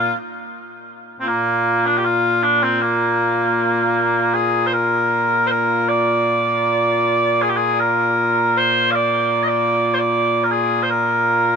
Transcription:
Already playing: A#2 A#3 F4
1.20 A#2 A#3 C4 F4
1.28 A#3
1.86 D4
1.97 G4
2.05 F4
2.43 D4
2.63 C4
2.81 A#3
4.34 G#4
4.67 C5
4.73 A#4
5.47 A#4 C5
5.88 D5
7.42 G#4
7.49 G4
7.56 G#4
7.80 A#4
8.57 C5
8.91 D5 F5
9.43 D#5
9.47 D5
9.94 C5
9.99 D5
10.44 A#4
10.51 G#4
10.83 C5
10.90 A#4

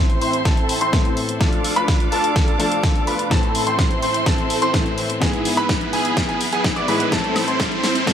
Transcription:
Already playing: A1 A2 E3 A3 C4 E4 A4 C5 E5 C6, riser
0.10 closed hi-hat
0.21 A1 C4 E4 C5 C6, open hi-hat
0.33 closed hi-hat
0.45 A1 C4 E4 A4 A5, kick, snare, closed hi-hat
0.57 closed hi-hat
0.69 open hi-hat
0.81 A1 C4 E4 C5 C6, closed hi-hat
0.92 A2 E3 A3 C4 A4, kick, snare, closed hi-hat
1.05 closed hi-hat
1.17 open hi-hat
1.29 closed hi-hat
1.39 D2 F3 A3 D4 F4 A4 D5 F5 A5 D6, kick, snare, closed hi-hat
1.53 closed hi-hat
1.64 open hi-hat
1.76 D2 D4 F4 B4 B5, closed hi-hat
1.88 kick, snare, closed hi-hat
2.00 closed hi-hat
2.12 D2 D4 F4 A4 A5, open hi-hat
2.24 closed hi-hat
2.36 kick, snare, closed hi-hat
2.48 D2 D4 F4 A4 A5, closed hi-hat
2.58 D2 F3 A3 D4 F4 A4 A5, open hi-hat
2.72 closed hi-hat
2.83 kick, snare, closed hi-hat
2.95 closed hi-hat
3.07 D2 D4 F4 B4 B5, open hi-hat
3.19 closed hi-hat
3.30 A1 A2 E3 A3 C4 E4 A4 C5 E5 A5 C6, kick, snare, closed hi-hat
3.43 closed hi-hat
3.55 open hi-hat
3.67 A1 C4 E4 C5 C6, closed hi-hat
3.79 kick, snare, closed hi-hat
3.91 closed hi-hat
4.02 A1 C4 E4 C5 C6, open hi-hat
4.14 closed hi-hat
4.26 A1 C4 E4 A4 A5, kick, snare, closed hi-hat
4.38 closed hi-hat
4.50 open hi-hat
4.62 A1 C4 E4 C5 C6, closed hi-hat
4.73 A2 E3 A3 C4 A4, kick, snare, closed hi-hat
4.86 closed hi-hat
4.98 open hi-hat
5.10 closed hi-hat
5.20 G#1 G#2 E3 G#3 B3 E4 G#4 B4 G#5 B5, kick, snare, closed hi-hat
5.33 closed hi-hat
5.45 open hi-hat
5.57 G#1 B3 E4 B4 B5, closed hi-hat
5.69 kick, snare, closed hi-hat
5.81 closed hi-hat
5.93 G#1 B3 E4 G#4 G#5, open hi-hat
6.05 closed hi-hat
6.17 kick, snare, closed hi-hat
6.29 G#1 B3 E4 G#4 G#5, closed hi-hat
6.41 open hi-hat
6.53 G#1 B3 E4 G#4 G#5, closed hi-hat
6.64 kick, snare, closed hi-hat
6.76 G#2 B3 E4 D5 D6, closed hi-hat
6.88 G#2 A2 E3 G#3 B3 E4 G#4 B4 B5, open hi-hat
7.00 closed hi-hat
7.11 A1 A2 E3 A3 C4 E4 A4 C5 E5 A5 C6, kick, snare, closed hi-hat
7.24 closed hi-hat
7.36 snare, open hi-hat, high woodblock
7.48 A1 C4 E4 C5 C6, closed hi-hat
7.60 kick, snare, closed hi-hat
7.72 closed hi-hat
7.83 A1 C4 E4 C5 C6, snare, open hi-hat
7.95 closed hi-hat
8.06 A2 E3 A3 C4 E4 A4 A5, kick, snare, closed hi-hat

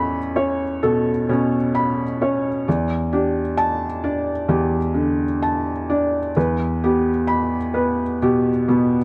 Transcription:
Already playing: E2 C#4 A4 C#5 B5
0.36 C#4 C#5
0.83 B2 A4
1.29 B2 C#4
1.75 B5
2.21 C#4 C#5
2.68 E2 D5
3.13 D4 G4
3.57 A5
4.04 D4 D5
4.48 E2 G4
4.94 D3
5.42 A5
5.90 D4 D5
6.36 E2 B4
6.84 B3 G4
7.27 B5
7.74 B3 B4
8.22 B2 G4
8.68 B2 B3

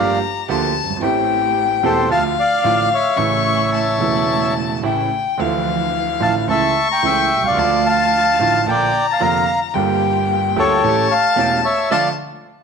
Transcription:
Already playing: G1 G2 F3 A#3 D4 F4 G4 D5 F5 A#5
0.49 D2 D3 F3 A#3 D4 F4 G4 A5
0.83 F#1
0.90 G1
0.96 G#1 E3
1.01 A1 A2 A3 C4 G4 G5
1.83 E1 E2 E3 A3 C4 G4 A4 C5
2.10 D2 D3 F3 A3 D4 F4 F5 A5
2.39 D5 F5
2.63 A1 A2 D3 F3 A3 D4 F4
2.94 C#5 E5
3.16 A1 A2 C#3 E3 A3 C#4 E4 C#6
3.20 E4
3.74 A5
3.98 E1 E2 C#3 E3 A3 C#4 E4
4.83 A1 A2 C#3 E3 A3 C#4 E4 G5
5.38 D2 D3 E3 F3 A3 D4 F5
5.42 E3
6.20 A1 A2 D3 F3 A3 D4 E4 F5 A5
6.48 C#2 C#3 E3 A3 C#4 E4 E5 A5 C#6
6.91 G5 A#5
7.03 C#2 C#3 E3 A3 C#4 E4 E5 G5
7.37 B1
7.43 C2 F5
7.48 C#2 D5
7.55 D2 D3 F3 A3 A5
7.59 D4 F4
7.86 F5 A5
8.39 A1 A2 D3 F3 A3 D4 F4
8.67 A#1 A#2 D3 F3 A#3 D4 F4 G5 A#5
8.71 D5
9.11 F5 A5
9.20 F1 F2 D3 F3 A#3 D4 F4 F5 A#5
9.74 G1 G2 D3 G3 A#3 F4 G4 G5
10.56 D2 D3 G3 A#3 F4 G4 A4 C#5
10.83 A1 A2 E3 A3 C#4 G4 A5
11.11 F5 A5
11.36 E1 E2 E3 A3 C#4 G4
11.65 C#5 E5
11.91 D3 F3 A3 D4 F4 D5 F5 A5

